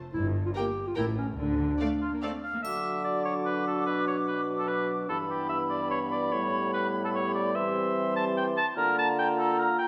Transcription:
0.13 double bass section G1, cello section G2, clarinet E4
0.46 clarinet F4
0.55 viola section A#3, clarinet G4, violin section A#4 G5
0.87 clarinet F4
0.96 double bass section A1, cello section A2, viola section A3, clarinet E4, violin section A#4 G5
1.18 clarinet C#4
1.37 double bass section D2, cello section D3, clarinet D4
1.80 viola section A3, cello section A3, violin section D5 F5
2.01 cor anglais F4
2.13 cello section A#3
2.22 viola section A3, cello section C4, cor anglais A4, violin section D5 F5
2.43 cor anglais F5
2.54 cello section A#3
2.63 bassoon D3, french horn section F#3 D4, clarinet F#4, cor anglais E5, flute D6, triangle
3.04 cor anglais D5
3.25 cor anglais C#5
3.46 cor anglais B4
3.67 cor anglais A4
3.86 bassoon B2, cor anglais B4
4.07 cor anglais C#5
4.28 cor anglais B4
4.58 cor anglais A4
4.68 cor anglais B4
5.09 bassoon G2, french horn section E3 B3, clarinet E4, cor anglais A4, flute B5
5.30 cor anglais G4
5.49 cor anglais E5
5.70 cor anglais D5
5.91 cor anglais C#5
6.11 cor anglais D5
6.31 bassoon A2, french horn section G3, clarinet G4, cor anglais C#5
6.74 cor anglais B4
7.05 cor anglais A4
7.14 cor anglais C#5
7.35 cor anglais D5
7.55 bassoon E3, french horn section C4, cor anglais E5, flute C6
8.16 cor anglais A5
8.37 cor anglais G5
8.57 cor anglais A5
8.76 bassoon D3, french horn section A#3 F4, clarinet F4, cor anglais A#4, flute A#5
8.99 cor anglais A5
9.19 cor anglais G5
9.39 cor anglais A4
9.59 cor anglais A#4
9.79 cor anglais G5

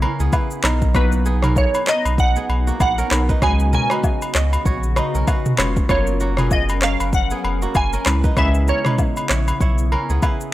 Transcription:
Already playing: ambient pad C#3 B3 E4, kora E4 C#5, synth pluck C#5
0.02 kora C#4 A#4, high agogo
0.20 sub bass C#2, kora B3 G#4, shaker
0.33 kora E4 B4, kick, high agogo, low woodblock, shaker
0.51 shaker
0.63 sub bass B1, synth keys F#3 B3 D#4 A#4, ambient pad F#3 D#4, kora D#4 A#4, cross-stick, clap, high agogo
0.82 kick, shaker
0.95 synth keys F#3 B3 D#4 B4, kora A#3 F#4, synth pluck B4, kick, cross-stick, high agogo, shaker
1.12 shaker
1.25 kora B3 G#4, shaker
1.42 synth keys F#3 B3 D#4 A#4, kora C#4 A#4, cross-stick, mid tom, high agogo, shaker
1.56 synth pluck C#5, kick, low woodblock, shaker
1.74 high agogo, shaker
1.87 kora D#4 B4, synth pluck D#5, cross-stick, clap
2.05 sub bass B1, high agogo, shaker
2.18 synth pluck F#5, kick, shaker
2.36 kora B3 G#4, shaker
2.49 sub bass B1, high agogo
2.67 kora A#3 F#4, shaker
2.80 sub bass A#1, synth pluck F#5, kick, high agogo, low woodblock, shaker
2.98 kora C#4 A#4, shaker
3.11 sub bass B1, synth keys F#3 B3 D#4 A#4, cross-stick, clap, high agogo
3.29 kora D#4 B4, kick, shaker
3.42 sub bass C#2, ambient pad C#3 F#4, synth keys G#3 C#4 F#4 B4, kora B3 G#4, synth pluck G#5, kick, cross-stick, high agogo, shaker
3.59 shaker
3.73 kora C#4 A#4, synth pluck G#5, mid tom, shaker
3.90 synth keys G#3 C#4 F#4 B4, kora D#4 B4, cross-stick, high agogo, shaker
4.04 kick, low woodblock, shaker
4.22 high agogo, shaker
4.35 sub bass C#2, kora F#4 D#5, cross-stick, clap, shaker
4.53 high agogo, shaker
4.65 sub bass A#1, kora F#4 C#5, kick, shaker
4.83 shaker
4.96 kora D#4 B4, cross-stick, high agogo, shaker
5.15 sub bass B1, kora C#4 A#4, shaker
5.28 kora F#4 B4, kick, high agogo, low woodblock, shaker
5.46 mid tom, shaker
5.58 sub bass F1, synth keys G#3 C#4 F#4 B4, kora F4 C#5, cross-stick, clap, high agogo, shaker
5.76 kick, shaker
5.89 sub bass F#1, synth keys F#3 C#4 F4 A#4, ambient pad F#3 C#4 A#4, kora A#3 F4, synth pluck C#5, kick, cross-stick, high agogo, shaker
6.07 shaker
6.20 kora A#3 F#4, shaker
6.37 synth keys F#3 C#4 F4 A#4, kora B3 G#4, cross-stick, mid tom, high agogo, shaker
6.51 synth pluck D#5, kick, low woodblock, shaker
6.69 high agogo, shaker
6.82 kora C#4 A#4, synth pluck F5, cross-stick, clap
7.00 sub bass F#1, high agogo, shaker
7.13 synth pluck F#5, kick, shaker
7.30 kora B3 G#4, shaker
7.44 sub bass F1, high agogo
7.62 kora A#3 F#4, shaker
7.75 sub bass F#1, synth pluck G#5, kick, high agogo, low woodblock, shaker
7.93 kora C#4 A#4, shaker
8.06 sub bass C#2, ambient pad C#3 B3 E4, synth keys G#3 C#4 E4 B4, cross-stick, clap, high agogo
8.24 kora D#4 B4, kick, shaker
8.36 sub bass C#2, synth keys G#3 C#4 E4 B4, kora B3 G#4, synth pluck E5, kick, cross-stick, high agogo, shaker
8.54 shaker
8.68 kora C#4 A#4, synth pluck C#5, shaker
8.85 synth keys G#3 C#4 E4 B4, kora D#4 B4, cross-stick, mid tom, high agogo, shaker
8.98 kick, low woodblock, shaker
9.17 high agogo, shaker
9.29 sub bass A#1, kora E4 C#5, cross-stick, clap
9.48 high agogo, shaker
9.61 sub bass B1, kora E4 C#5, kick, shaker
9.78 shaker
9.92 kora C#4 A#4, high agogo
10.10 sub bass C#2, kora B3 G#4, shaker
10.22 kora E4 B4, kick, high agogo, low woodblock, shaker
10.41 shaker

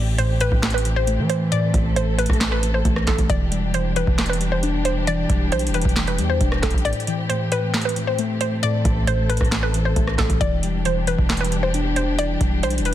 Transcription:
Already playing: 808-style bass A1, synth keys A2 E3, string section E3 A3 C4 G4, synth pluck D5
0.18 synth keys A2, synth pluck C5, closed hi-hat
0.41 synth keys A2, synth pluck B4, closed hi-hat
0.52 808-style bass A1, kick
0.63 snare, clap, closed hi-hat
0.70 synth pluck B4, closed hi-hat
0.78 closed hi-hat
0.85 synth keys E3, closed hi-hat
0.96 synth pluck C5
1.07 synth keys A3, closed hi-hat
1.19 808-style bass E3
1.30 synth pluck C5, closed hi-hat
1.52 synth keys A2, string section A4, synth pluck D5, closed hi-hat
1.74 808-style bass A1, synth keys E3, kick, closed hi-hat
1.96 synth keys A2, synth pluck C5, closed hi-hat
2.18 synth keys A2, synth pluck B4, closed hi-hat
2.26 808-style bass A1, kick, cross-stick, closed hi-hat
2.33 closed hi-hat
2.41 snare, clap, closed hi-hat
2.52 synth pluck B4
2.63 synth keys E3, closed hi-hat
2.74 synth pluck C5
2.85 808-style bass A1, synth keys A3, kick, closed hi-hat
2.96 cross-stick
3.07 808-style bass A1, synth pluck A4, kick, snare, clap, closed hi-hat, open hi-hat
3.18 808-style bass A1, kick, closed hi-hat
3.30 808-style bass E1, string section B2 D4 G4, synth keys E3, synth pluck D5, kick, closed hi-hat
3.52 synth keys G3, closed hi-hat
3.74 synth keys E3, synth pluck C5, closed hi-hat
3.96 synth keys E3, synth pluck B4, closed hi-hat
4.07 808-style bass E1, kick
4.18 snare, clap, closed hi-hat
4.26 synth pluck B4, closed hi-hat
4.33 closed hi-hat
4.41 synth keys G3, closed hi-hat
4.52 synth pluck C5
4.63 synth keys D4, closed hi-hat
4.85 synth pluck C5, closed hi-hat
5.07 synth keys E3, synth pluck D5, closed hi-hat
5.30 808-style bass E1, synth keys G3, kick, closed hi-hat
5.52 808-style bass B1, synth keys E3, synth pluck C5, closed hi-hat
5.59 closed hi-hat
5.67 808-style bass E1, closed hi-hat
5.74 synth keys E3, synth pluck B4, closed hi-hat
5.82 808-style bass E1, kick, closed hi-hat
5.89 closed hi-hat
5.96 snare, clap, closed hi-hat
6.07 synth pluck B4, closed hi-hat
6.18 808-style bass E2, synth keys G3, closed hi-hat
6.30 synth pluck C5
6.41 808-style bass E1, synth keys D4, kick, closed hi-hat
6.52 cross-stick
6.63 808-style bass E1, synth pluck A4, kick, snare, clap, closed hi-hat, open hi-hat
6.70 808-style bass A1, kick, closed hi-hat
6.78 closed hi-hat
6.85 synth keys A2, string section A3 C4, synth pluck D5, closed hi-hat
6.93 closed hi-hat
7.00 closed hi-hat
7.07 synth keys E3, closed hi-hat
7.29 synth keys A2, synth pluck C5, closed hi-hat
7.52 synth keys A2, synth pluck B4, closed hi-hat
7.74 snare, clap, closed hi-hat
7.82 synth pluck B4, closed hi-hat
7.89 closed hi-hat
7.96 synth keys E3, closed hi-hat
8.07 synth pluck C5
8.19 synth keys A3, closed hi-hat
8.41 synth pluck C5, closed hi-hat
8.63 synth keys A2, string section A4, synth pluck D5, closed hi-hat
8.85 808-style bass A1, synth keys E3, kick, closed hi-hat
9.07 synth keys A2, synth pluck C5, closed hi-hat
9.29 synth keys A2, synth pluck B4, closed hi-hat
9.37 808-style bass A1, kick, cross-stick, closed hi-hat
9.45 closed hi-hat
9.52 snare, clap, closed hi-hat
9.63 synth pluck B4
9.74 synth keys E3, closed hi-hat
9.85 synth pluck C5
9.96 808-style bass A1, synth keys A3, kick, closed hi-hat
10.07 cross-stick
10.18 808-style bass A1, synth pluck A4, kick, snare, clap, closed hi-hat, open hi-hat
10.30 808-style bass A1, kick, closed hi-hat
10.41 808-style bass E1, string section B2 E3 D4 G4, synth keys E3, synth pluck D5, kick, closed hi-hat
10.63 synth keys G3, closed hi-hat
10.85 synth keys E3, synth pluck C5, closed hi-hat
11.07 synth keys E3, synth pluck B4, closed hi-hat
11.19 808-style bass E1, kick
11.30 snare, clap, closed hi-hat
11.37 synth pluck B4, closed hi-hat
11.45 closed hi-hat
11.52 synth keys G3, closed hi-hat
11.63 synth pluck C5
11.74 synth keys D4, closed hi-hat
11.96 synth pluck C5, closed hi-hat
12.19 synth keys E3, synth pluck D5, closed hi-hat
12.41 808-style bass E1, synth keys G3, kick, closed hi-hat
12.63 808-style bass B1, synth keys E3, synth pluck C5, closed hi-hat
12.70 closed hi-hat
12.78 808-style bass E1, closed hi-hat
12.85 synth keys E3, synth pluck B4, closed hi-hat

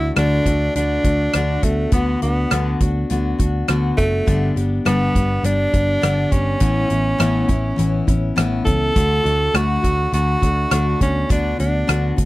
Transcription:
Already playing: picked electric bass D2, steel-string acoustic guitar A3 D4 F#4, tenor saxophone E4
0.16 picked electric bass D2, steel-string acoustic guitar D3 A3 D4 F#4, tenor saxophone D4, cross-stick, closed hi-hat
0.46 picked electric bass D2, steel-string acoustic guitar A3 D4 F#4, kick, closed hi-hat
0.75 picked electric bass D2, steel-string acoustic guitar D3 A3 D4 F#4, tenor saxophone D4, closed hi-hat
1.04 picked electric bass D2, steel-string acoustic guitar A3 D4 F#4, kick, closed hi-hat
1.33 picked electric bass D2, steel-string acoustic guitar D3 A3 D4 F#4, cross-stick, closed hi-hat
1.63 picked electric bass D2, tenor saxophone A3, steel-string acoustic guitar B3 D4 F#4, kick, closed hi-hat
1.92 picked electric bass D2, steel-string acoustic guitar D3 B3 D4 F#4, tenor saxophone B3, kick, closed hi-hat
2.22 picked electric bass D2, tenor saxophone B3, steel-string acoustic guitar B3 D4 F#4, closed hi-hat
2.50 picked electric bass D2, steel-string acoustic guitar D3 B3 D4 F#4, cross-stick, closed hi-hat
2.80 picked electric bass D2, steel-string acoustic guitar B3 D4 F#4, kick, closed hi-hat
3.10 picked electric bass D2, steel-string acoustic guitar D3 B3 D4 F#4, closed hi-hat
3.38 picked electric bass D2, steel-string acoustic guitar B3 D4 F#4, kick, closed hi-hat
3.68 picked electric bass D2, steel-string acoustic guitar D3 B3 D4 F#4, cross-stick, closed hi-hat
3.97 picked electric bass F#1, tenor saxophone A3, steel-string acoustic guitar D4 F#4, kick, closed hi-hat
4.26 picked electric bass G1, steel-string acoustic guitar G2 D3 G3 B3 D4 G4, kick, closed hi-hat
4.56 picked electric bass G1, steel-string acoustic guitar G3 B3 D4 G4, closed hi-hat
4.85 picked electric bass G1, steel-string acoustic guitar G2 D3 G3 B3 D4 G4, tenor saxophone B3, cross-stick, closed hi-hat
5.15 picked electric bass G1, steel-string acoustic guitar G3 B3 D4 G4, kick, closed hi-hat
5.43 picked electric bass G1, steel-string acoustic guitar G3 B3 D4 G4, tenor saxophone D4, closed hi-hat
5.73 picked electric bass G1, steel-string acoustic guitar G3 B3 D4 G4, kick, closed hi-hat
6.02 picked electric bass G1, steel-string acoustic guitar G2 D3 G3 B3 D4 G4, cross-stick, closed hi-hat
6.31 picked electric bass G1, steel-string acoustic guitar G3 B3 D4 G4, tenor saxophone C#4, kick, closed hi-hat
6.60 picked electric bass A1, steel-string acoustic guitar A2 E3 B3 C#4 E4, kick, closed hi-hat
6.90 picked electric bass A1, steel-string acoustic guitar B3 C#4 E4, closed hi-hat
7.18 picked electric bass A1, steel-string acoustic guitar A2 E3 B3 C#4 E4, cross-stick, closed hi-hat
7.48 picked electric bass A1, steel-string acoustic guitar B3 C#4 E4, kick, closed hi-hat
7.76 picked electric bass A1, steel-string acoustic guitar E3 B3 C#4 E4, closed hi-hat
8.07 picked electric bass A1, steel-string acoustic guitar B3 C#4 E4, kick, closed hi-hat
8.36 picked electric bass A1, steel-string acoustic guitar A2 E3 B3 C#4 E4, cross-stick, closed hi-hat
8.64 picked electric bass C#2, steel-string acoustic guitar C#4 E4, tenor saxophone A4, kick, closed hi-hat
8.95 picked electric bass D2, steel-string acoustic guitar D3 A3 D4 F#4, kick, closed hi-hat
9.23 picked electric bass D2, steel-string acoustic guitar A3 D4 F#4, closed hi-hat
9.54 picked electric bass D2, steel-string acoustic guitar D3 A3 D4 F#4, tenor saxophone F#4, cross-stick, closed hi-hat
9.83 picked electric bass D2, steel-string acoustic guitar A3 D4 F#4, kick, closed hi-hat
10.12 picked electric bass D2, steel-string acoustic guitar D3 A3 D4 F#4, tenor saxophone F#4, closed hi-hat
10.42 picked electric bass D2, steel-string acoustic guitar A3 D4 F#4, kick, closed hi-hat
10.71 picked electric bass D2, steel-string acoustic guitar D3 A3 D4 F#4, cross-stick, closed hi-hat
11.00 picked electric bass D2, steel-string acoustic guitar B3 D4 F#4, tenor saxophone C#4, kick, closed hi-hat
11.29 picked electric bass D2, steel-string acoustic guitar D3 B3 D4 F#4, tenor saxophone D4, kick, closed hi-hat
11.59 picked electric bass D2, steel-string acoustic guitar B3 D4 F#4, tenor saxophone D4, closed hi-hat
11.87 picked electric bass D2, steel-string acoustic guitar D3 B3 D4 F#4, cross-stick, closed hi-hat
12.16 picked electric bass D2, steel-string acoustic guitar B3 D4 F#4, kick, closed hi-hat

